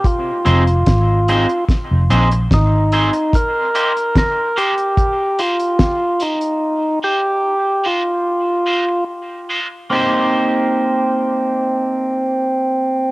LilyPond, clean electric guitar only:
\new Staff \with { instrumentName = "Clean electric guitar" } { \time 4/4 \key c \minor \tempo 4 = 73 r8 <c' ees' aes' c''>8 r8 <c' ees' aes' c''>8 r8 <c' ees' aes' c''>8 r8 <c' ees' aes' c''>8 | r8 <bes ees' g' c''>8 r8 <bes ees' g' c''>8 r8 <bes ees' g' c''>8 r8 <bes ees' g' c''>8 | r8 <aes ees' f' c''>8 r8 <aes ees' f' c''>8 r8 <aes ees' f' c''>8 r8 <aes ees' f' c''>8 | <bes ees' g' c''>1 | }